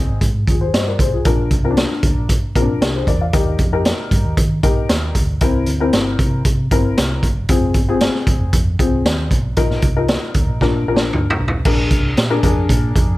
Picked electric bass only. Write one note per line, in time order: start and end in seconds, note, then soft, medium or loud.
0.09 0.19 G#1 medium
0.21 0.43 G#2 loud
0.48 0.69 D#2 medium
0.74 0.95 G2 medium
0.99 1.21 B1 medium
1.25 1.47 A#1 medium
1.51 1.84 C2 medium
2.03 2.14 D2 medium
2.17 2.38 A#1 medium
2.56 2.66 A#2 medium
2.69 2.79 A#1 medium
2.81 3.03 C2 medium
3.07 3.29 E2 medium
3.34 3.55 D#2 medium
3.59 3.92 F2 medium
4.11 4.22 G2 medium
4.24 4.35 D#2 medium
4.37 4.59 D#3 medium
4.63 4.85 A#1 medium
4.89 5.11 D#2 medium
5.15 5.37 D2 medium
5.41 5.63 C2 loud
5.67 5.89 D2 medium
5.94 6.15 G1 medium
6.19 6.41 C3 medium
6.45 6.67 C3 medium
6.71 6.93 G1 medium
6.98 7.24 C2 medium
7.23 7.45 F#1 medium
7.49 7.71 F1 loud
7.75 8.07 G1 medium
8.27 8.38 G#1 medium
8.40 8.51 F1 medium
8.53 8.75 F2 medium
8.79 9.01 C2 medium
9.05 9.27 D#2 loud
9.31 9.53 B1 medium
9.57 9.79 A#1 medium
9.83 10.16 C2 medium
10.35 10.46 D2 medium
10.48 10.59 A#1 medium
10.61 10.83 A#2 medium
10.88 11.09 A#1 medium
11.14 11.24 D2 loud
11.39 11.61 B1 medium
11.65 11.87 A#1 medium
11.91 12.13 C2 medium
12.17 12.39 A#2 loud
12.43 12.65 F2 medium
12.69 12.91 A#2 loud
12.95 13.18 F2 medium